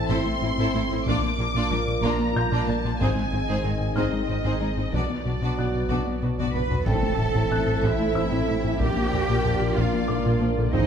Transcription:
Already playing: sub bass A1, analog synth pad E3 C4 A4 E5, french horn section C4 E4, felt piano E6
0.09 double bass section A1, analog synth bass A2, cello section A2, viola section C4 E4, violin section A4 C5 C6, taiko
0.26 analog synth bass A3
0.42 double bass section A1, analog synth bass A2, cello section A2, viola section C4 E4, violin section C4 E4
0.58 analog synth bass A2, cello section A2, viola section C4 E4, violin section A4 C5
0.74 double bass section A1, cello section A2, analog synth bass A3, viola section C4 E4, violin section E4 A4
0.90 analog synth bass A2, cello section A2, viola section C4 E4, violin section C4 E4
1.05 sub bass A#1, double bass section A#1, analog synth bass A#2, cello section A#2, analog synth pad F3 A#3 A#4 D5, french horn section A#3 F4, viola section A#3 D4, violin section F4 D5 D6, taiko
1.23 analog synth bass A#3
1.38 double bass section A#1, analog synth bass A#2, cello section A#2, violin section A#3 F4, viola section A#3 D4
1.55 analog synth bass A#2, cello section A#2, viola section A#3 D4, violin section F4 D5
1.70 double bass section A#1, cello section A#2, analog synth bass A#2, viola section A#3 D4, violin section D4 A#4
1.87 analog synth bass A#2
2.02 double bass section A#1, cello section A#2, analog synth bass A#2, viola section A#3 D4, violin section F4 D5 A#5, taiko
2.19 analog synth bass A#3
2.35 double bass section A#1, cello section A#2, analog synth bass A#2, violin section A#3 F4, viola section A#3 D4, felt piano F5 G6
2.51 cello section A#2, analog synth bass A#2, viola section A#3 D4, violin section F4 D5
2.67 double bass section A#1, cello section A#2, analog synth bass A#3, viola section A#3 D4, violin section D4 A#4 A5
2.83 cello section A#2, analog synth bass A#2, viola section A#3 D4, violin section A#3 F4
2.99 double bass section G#1, sub bass G#1, cello section G#2, analog synth bass G#2, analog synth pad D#3 C4 G#4 D#5, french horn section C4 D#4, viola section C4 D#4, violin section G#4 C5 G#5, taiko
3.16 analog synth bass G#3
3.31 double bass section G#1, cello section G#2, analog synth bass G#2, violin section C4 D#4, viola section C4 D#4
3.48 cello section G#2, analog synth bass G#2, viola section C4 D#4, violin section G#4 C5
3.64 double bass section G#1, cello section G#2, analog synth bass G#2, viola section C4 D#4, violin section D#4 G#4
3.80 analog synth bass G#2
3.96 double bass section G#1, cello section G#2, analog synth bass G#2, viola section C4 D#4, violin section G#4 C5 D#5, felt piano F6, taiko
4.13 analog synth bass G#3
4.28 double bass section G#1, cello section G#2, analog synth bass G#2, violin section C4 D#4, viola section C4 D#4
4.44 analog synth bass G#2, cello section G#2, viola section C4 D#4, violin section G#4 C5
4.61 double bass section G#1, cello section G#2, analog synth bass G#3, viola section C4 D#4, violin section D#4 G#4
4.77 analog synth bass G#2, cello section G#2, viola section C4 D#4, violin section C4 D#4
4.93 double bass section B1, sub bass B1, analog synth bass B2, cello section B2, analog synth pad F#3 B3 F#4 D5, french horn section B3 F#4, viola section B3 D4, violin section F#4 D5, taiko
5.09 analog synth bass B3
5.25 double bass section B1, analog synth bass B2, cello section B2, violin section B3 F#4, viola section B3 D4
5.42 analog synth bass B2, cello section B2, viola section B3 D4, violin section F#4 D5
5.57 double bass section B1, cello section B2, analog synth bass B2, viola section B3 D4, violin section D4 B4, felt piano F#5 F#6
5.75 analog synth bass B2
5.89 double bass section B1, cello section B2, analog synth bass B2, viola section B3 D4, violin section F#4 D5, taiko
6.07 analog synth bass B3
6.22 double bass section B1, analog synth bass B2, cello section B2, violin section B3 F#4, viola section B3 D4
6.38 analog synth bass B2, cello section B2, viola section B3 D4, violin section F#4 D5, taiko mid
6.54 double bass section B1, cello section B2 B4, analog synth bass B3, viola section B3 D4, violin section D4 B4 B5, taiko low-mid
6.70 analog synth bass B2, cello section B2, viola section B3 D4, violin section B3 F#4, taiko low
6.86 double bass section A1, sub bass A1, analog synth bass A2, trombone section E3 A3, analog synth pad E3 C4 A4 E5, french horn section C4 E4, viola section C4 A4, cello section A4, violin section E5 A5, felt piano G5, taiko, impact
7.02 analog synth bass A3
7.18 double bass section A1, analog synth bass A2, viola section E3
7.34 double bass section A1, analog synth bass A2, viola section C4
7.50 double bass section A1, analog synth bass A2, viola section A3, felt piano A5 F#6
7.67 analog synth bass A2
7.83 double bass section A1, analog synth bass A2, viola section C4, cello section E4, violin section E5, taiko
8.00 analog synth bass A3
8.15 double bass section A1, analog synth bass A2, viola section E3, felt piano C5 E6
8.31 double bass section A1, analog synth bass A2, viola section C4
8.47 double bass section A1, viola section A3, analog synth bass A3
8.63 double bass section A1, analog synth bass A2, viola section E3
8.79 double bass section A#1, sub bass A#1, analog synth bass A#2, trombone section F3 A#3, analog synth pad F3 A#3 A#4 D5, french horn section A#3 D4, viola section A#3 F4, cello section G4, violin section D5 G5, taiko
8.97 analog synth bass A#3
9.12 double bass section A#1, analog synth bass A#2, viola section D3, taiko low
9.28 double bass section A#1, analog synth bass A#2, viola section A#3
9.44 double bass section A#1, analog synth bass A#2, viola section F3, taiko low
9.61 analog synth bass A#2
9.77 double bass section A#1, analog synth bass A#2, viola section A#3, cello section F4, violin section F5, taiko
9.94 analog synth bass A#3
10.08 double bass section A#1, analog synth bass A#2, viola section D3, felt piano F5 D6
10.25 double bass section A#1, analog synth bass A#2, viola section A#3
10.40 double bass section A#1, viola section F3, analog synth bass A#3
10.57 double bass section A#1, analog synth bass A#2, viola section D3, taiko low
10.72 double bass section G#1, sub bass G#1, analog synth bass G#2, analog synth pad D#3 C4 G#4 D#5, trombone section D#3 G#3, viola section C4 G#4, french horn section C4 D#4, cello section D#4, violin section D#5, taiko

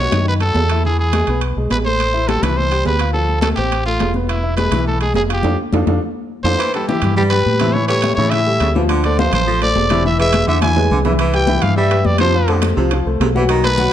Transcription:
0.00 upright piano F#3 F#4, trumpet C#5
0.12 fingered electric bass F#2, upright piano D#3 D#4, high conga, high timbale
0.26 trumpet B4, high conga
0.40 upright piano F#3 F#4, trumpet A4, high conga, high timbale
0.54 fingered electric bass E2, high conga, low timbale
0.69 upright piano E4 E5, high conga, high timbale
0.84 upright piano E3 E4, trumpet G#4, high conga
0.98 trumpet G#4, high conga
1.13 upright piano G#3 G#4, high conga, high timbale, low timbale
1.27 fingered electric bass B1, upright piano B3 B4, high conga, high timbale
1.41 high conga, high timbale
1.56 fingered electric bass B1, upright piano G#3 G#4, high conga
1.70 fingered electric bass A1, trumpet B4, high conga, high timbale, low timbale
1.85 upright piano A3 A4, trumpet C5
2.00 high conga, high timbale
2.14 upright piano E4 E5, high conga
2.28 upright piano G3 G4, trumpet A4, high conga, high timbale, low timbale
2.42 fingered electric bass C2, upright piano E3 E4, trumpet B4, high conga, high timbale
2.57 trumpet C5, high conga
2.72 upright piano G3 G4, high conga, high timbale
2.85 fingered electric bass D2, trumpet B4, high conga, low timbale
2.99 upright piano F4 F5, high conga, high timbale
3.13 upright piano F3 F4, trumpet A4, high conga
3.29 high conga
3.41 upright piano A3 A4, trumpet A4, high conga, high timbale, low timbale
3.56 fingered electric bass A1, upright piano C4 C5, trumpet G4, high conga, high timbale
3.72 high conga, high timbale
3.86 upright piano A3 A4, trumpet F4, high conga
4.00 fingered electric bass E1, high conga, high timbale, low timbale
4.14 upright piano B3 B4, high conga
4.28 trumpet E4, high conga, high timbale
4.43 upright piano E4 E5, high conga
4.57 upright piano G#3 G#4, trumpet B4, high conga, high timbale, low timbale
4.71 fingered electric bass B1, upright piano E3 E4, high conga, high timbale
4.86 trumpet A4, high conga
5.00 upright piano G#3 G#4, trumpet G#4, high conga, high timbale
5.14 fingered electric bass F1, trumpet G#4, high conga, low timbale
5.29 upright piano F4 F5, high conga, high timbale
5.33 trumpet G4
5.43 fingered electric bass F2, upright piano D4 F4 A4, high conga, high timbale
5.73 fingered electric bass F2, upright piano D4 F4 A4, high conga, high timbale
5.87 fingered electric bass F2, upright piano D4 F4 A4, high conga, high timbale
6.44 fingered electric bass F2, upright piano D4 F4 A4, trumpet C5, high conga, high timbale
6.58 baritone saxophone E3, high conga, high timbale
6.74 upright piano G3 G4 B4, trumpet A4, high conga, high timbale
6.88 upright piano E3 E4 E5, trumpet G4, high conga
7.02 fingered electric bass G2, high conga, low conga, high timbale
7.17 baritone saxophone G3, upright piano G3 G4 B4, trumpet G4, high conga, low conga
7.30 upright piano G3 G4 B4, trumpet B4, high conga, high timbale
7.46 fingered electric bass A2, high conga
7.59 baritone saxophone C3, upright piano E3 E4 E5, high conga, high timbale
7.73 upright piano E3 E4 E5, trumpet C#5, high conga
7.88 baritone saxophone E3, upright piano G3 G4 A4, trumpet C#5, high conga, high timbale
8.02 high conga, high timbale
8.15 fingered electric bass A2, baritone saxophone C#3, upright piano E3 E4 E5, trumpet C#5
8.19 high conga
8.30 upright piano E3 E4 E5, trumpet E5, high conga, high timbale
8.47 upright piano G3 G4 A4, high conga
8.60 fingered electric bass D2, baritone saxophone C#3, high conga, high timbale
8.75 baritone saxophone E3, upright piano F3 F4 F5, high conga
8.89 baritone saxophone D3, high conga, high timbale
9.04 upright piano A3 A4 C5, trumpet D5, high conga, high timbale
9.19 upright piano F3 F4 F5, trumpet C5, high conga
9.32 fingered electric bass A1, trumpet C5, high conga, low conga, high timbale
9.47 baritone saxophone F3, upright piano A3 A4 C5, high conga
9.61 upright piano A3 A4 C5, trumpet D5, high conga, high timbale
9.75 fingered electric bass E1, high conga, low timbale
9.90 baritone saxophone C3, upright piano E3 E4 E5, high conga, high timbale
10.05 upright piano E3 E4 E5, trumpet E5, high conga
10.19 baritone saxophone E3, upright piano G#3 G#4 B4, trumpet E5, high conga, high timbale
10.33 high conga, high timbale
10.47 fingered electric bass E2, baritone saxophone D3, upright piano E3 E4 E5, trumpet E5, high conga
10.62 upright piano E3 E4 E5, trumpet G#5, high conga, high timbale
10.76 upright piano G#3 G#4 B4, high conga, high timbale
10.91 fingered electric bass C2, baritone saxophone D3, low conga
11.05 baritone saxophone E3, upright piano E3 E4 E5, low conga, low timbale
11.19 baritone saxophone E3, high conga, high timbale
11.33 upright piano G3 G4 B4, trumpet G5, high conga, high timbale
11.47 upright piano E3 E4 E5, high conga
11.62 fingered electric bass G2, trumpet F5, high conga, low conga, high timbale
11.76 upright piano G3 G4 B4, baritone saxophone G3, trumpet E5, high conga
11.91 upright piano G3 G4 B4, high conga, high timbale
12.05 fingered electric bass F2, trumpet D5, high conga
12.18 baritone saxophone C3, upright piano F3 F4 F5, trumpet C5, high conga, high timbale
12.34 upright piano F3 F4 F5, high conga
12.48 baritone saxophone D3, upright piano A3 A4 C5, high conga, high timbale
12.62 high conga, high timbale
12.77 fingered electric bass C2, baritone saxophone C3, upright piano F3 F4 F5, high conga
12.91 upright piano F3 F4 F5, high conga, high timbale
13.06 fingered electric bass C2, upright piano A3 A4 C5, high conga
13.20 fingered electric bass B1, baritone saxophone C3, high conga, high timbale, low timbale
13.35 baritone saxophone E3, upright piano F#3 F#4 F#5, high conga
13.49 baritone saxophone D#3, high conga, high timbale
13.64 upright piano A3 A4 B4, trumpet B4, high conga, high timbale
13.78 upright piano F#3 F#4 F#5, high conga

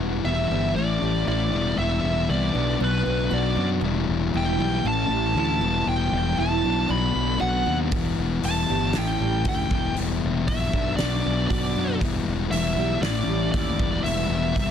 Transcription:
Already playing: fingered electric bass E1, steel-string acoustic guitar E2, distorted electric guitar E3 G3 B3 E4
0.24 fingered electric bass E1, distorted electric guitar E3 G3 B3 E4, lead electric guitar E5
0.50 fingered electric bass G1, distorted electric guitar G3 B3 E4
0.75 fingered electric bass A1, distorted electric guitar A2 E3 A3 C#4 E4, lead electric guitar D5
1.02 fingered electric bass A1, steel-string acoustic guitar G3
1.26 fingered electric bass A1, distorted electric guitar A2 E3 A3 C#4 E4, lead electric guitar D5
1.51 fingered electric bass E1, steel-string acoustic guitar E2, distorted electric guitar E3 G3 B3 E4
1.77 fingered electric bass E1, steel-string acoustic guitar E2, distorted electric guitar E3 G3 B3 E4, lead electric guitar E5
2.04 fingered electric bass E1
2.28 fingered electric bass C2, distorted electric guitar E3 G3 B3 E4, lead electric guitar D5
2.54 fingered electric bass B1, distorted electric guitar B2 F#3 B3 D4
2.79 fingered electric bass B1, distorted electric guitar B2 F#3 B3 D4
2.84 lead electric guitar B4
3.06 fingered electric bass B1, steel-string acoustic guitar B3
3.31 fingered electric bass B1, distorted electric guitar B2 F#3 B3 D4, steel-string acoustic guitar F#4, lead electric guitar D5
3.56 fingered electric bass F#2, distorted electric guitar F#3 B3 D4
3.81 fingered electric bass E1, steel-string acoustic guitar E2, distorted electric guitar E3 G3 B3
3.85 distorted electric guitar E4
4.09 fingered electric bass E1
4.33 fingered electric bass E1, distorted electric guitar E3 G3 B3 E4, lead electric guitar G5
4.59 fingered electric bass B1, distorted electric guitar G3 B3 E4
4.84 fingered electric bass A1, distorted electric guitar A2 E3 A3 C#4 E4
4.88 lead electric guitar A5
5.09 fingered electric bass A1, steel-string acoustic guitar G3
5.35 fingered electric bass D2, distorted electric guitar A2 E3 A3 C#4 E4
5.40 lead electric guitar A5
5.61 fingered electric bass E1, steel-string acoustic guitar E2, distorted electric guitar E3 G3 B3 E4
5.86 fingered electric bass E1, steel-string acoustic guitar E2, distorted electric guitar E3 G3 B3 E4, lead electric guitar G5
6.12 fingered electric bass E1
6.38 fingered electric bass E1, distorted electric guitar E3 G3 B3 E4, lead electric guitar A5
6.64 fingered electric bass B1, distorted electric guitar B2 F#3 B3 D4
6.89 fingered electric bass B1, distorted electric guitar B2 F#3 B3 D4, lead electric guitar B5
7.15 fingered electric bass B1, steel-string acoustic guitar B3
7.39 fingered electric bass B1, distorted electric guitar B2 F#3 B3 D4, steel-string acoustic guitar F#4, lead electric guitar F#5
7.66 fingered electric bass D#2, distorted electric guitar F#3 B3 D4
7.92 fingered electric bass E1, distorted electric guitar E3 G3 B3 E4, kick, open hi-hat
8.18 fingered electric bass E1
8.43 fingered electric bass E1, distorted electric guitar E3 G3 B3 E4, lead electric guitar A5, open hi-hat
8.68 fingered electric bass G1, distorted electric guitar G3 B3 E4
8.93 fingered electric bass A1, distorted electric guitar A2 E3 A3 C#4 E4, snare, open hi-hat
8.98 lead electric guitar G5
9.21 fingered electric bass A1, steel-string acoustic guitar G3
9.44 fingered electric bass D2, distorted electric guitar A2 E3 A3 C#4 E4, kick, open hi-hat
9.49 lead electric guitar G5
9.69 fingered electric bass E1, steel-string acoustic guitar E2, distorted electric guitar E3 G3 B3 E4, kick
9.94 steel-string acoustic guitar E2, distorted electric guitar E3 G3 B3 E4, open hi-hat
9.98 fingered electric bass E1
10.24 fingered electric bass E1
10.46 fingered electric bass A#1, distorted electric guitar E3 G3 B3 E4, lead electric guitar E5, kick, open hi-hat
10.73 fingered electric bass B1, distorted electric guitar B2 F#3 B3 D4, kick
10.96 distorted electric guitar B2 F#3, lead electric guitar D5, snare, open hi-hat
11.01 fingered electric bass B1, distorted electric guitar B3 D4
11.24 fingered electric bass B1, steel-string acoustic guitar B3
11.47 fingered electric bass B1, distorted electric guitar B2 F#3, steel-string acoustic guitar F#4, lead electric guitar D5, kick
11.51 distorted electric guitar B3 D4, open hi-hat
11.75 fingered electric bass F#2, distorted electric guitar F#3 B3 D4
12.00 fingered electric bass E1, steel-string acoustic guitar E2, distorted electric guitar E3 G3 B3 E4, kick, open hi-hat
12.27 fingered electric bass E1
12.51 fingered electric bass E1, distorted electric guitar E3 G3 B3 E4, lead electric guitar E5, open hi-hat
12.76 fingered electric bass B1, distorted electric guitar G3 B3 E4
13.00 fingered electric bass A1, distorted electric guitar A2 E3 A3 C#4 E4, lead electric guitar D5, snare, open hi-hat
13.04 steel-string acoustic guitar A2
13.26 fingered electric bass A1, steel-string acoustic guitar G3
13.52 fingered electric bass D#2, distorted electric guitar A2 E3 A3 C#4 E4, lead electric guitar D5, kick, open hi-hat
13.78 fingered electric bass E1, steel-string acoustic guitar E2, distorted electric guitar E3 G3 B3 E4, kick
14.03 fingered electric bass E1, steel-string acoustic guitar E2, distorted electric guitar E3 G3 B3 E4, lead electric guitar E5, open hi-hat
14.29 fingered electric bass E1
14.54 fingered electric bass C2, distorted electric guitar E3 G3 B3 E4, kick, open hi-hat

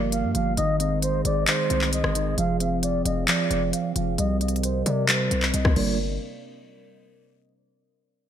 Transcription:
Already playing: 808-style bass G1, clean electric guitar F3 A#3, analog synth pad G3 G4 A#4 F5
0.12 flute F5, closed hi-hat
0.24 808-style bass G2
0.35 808-style bass G1, clean electric guitar F3, flute F5, closed hi-hat
0.57 808-style bass G#1, clean electric guitar D#3, analog synth pad G#3 G#4 C5 D#5, flute D#5, closed hi-hat
0.80 clean electric guitar C4, flute D#5, closed hi-hat
1.02 flute C5, closed hi-hat
1.25 808-style bass G#1, flute D5, closed hi-hat
1.47 clean electric guitar D#3, flute C5, clap, closed hi-hat
1.70 808-style bass C2, clean electric guitar C4, closed hi-hat
1.81 clap
1.93 flute D#5, closed hi-hat
2.04 808-style bass G#1, cross-stick
2.15 clean electric guitar D#3, closed hi-hat
2.38 808-style bass F1, analog synth pad F3 C4 F5, clean electric guitar F3, flute F5, closed hi-hat
2.60 clean electric guitar C4, flute F5, closed hi-hat
2.83 flute D5, closed hi-hat
3.05 808-style bass F1, flute D#5, closed hi-hat
3.28 clean electric guitar F3, flute D5, clap, closed hi-hat
3.51 808-style bass F1, clean electric guitar C4, closed hi-hat
3.73 flute F5, closed hi-hat
3.96 808-style bass F1, clean electric guitar F3, flute F5, closed hi-hat
4.18 808-style bass C2, analog synth pad C3 A#4 D#5, clean electric guitar G3, flute D#5, closed hi-hat
4.41 clean electric guitar C4, flute D#5, closed hi-hat
4.48 closed hi-hat
4.56 closed hi-hat
4.63 flute C5, closed hi-hat
4.86 808-style bass C3, flute D5, closed hi-hat
5.08 clean electric guitar G3, flute C5, clap, closed hi-hat
5.31 808-style bass C2, clean electric guitar C4, closed hi-hat
5.42 clap
5.54 808-style bass C2, flute D#5, closed hi-hat
5.65 kick, cross-stick
5.76 808-style bass G1, clean electric guitar G3 A#3 D4 F4, analog synth pad G3 D4 A#4 F5, flute D5, crash

